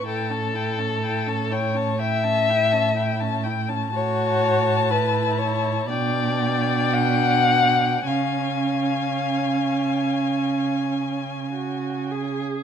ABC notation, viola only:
X:1
M:4/4
L:1/16
Q:1/4=59
K:A
V:1 name="Viola"
E C E C E C E C E C E C E C E C | [K:C#phr] F4 E4 D8 | C12 F2 G2 |]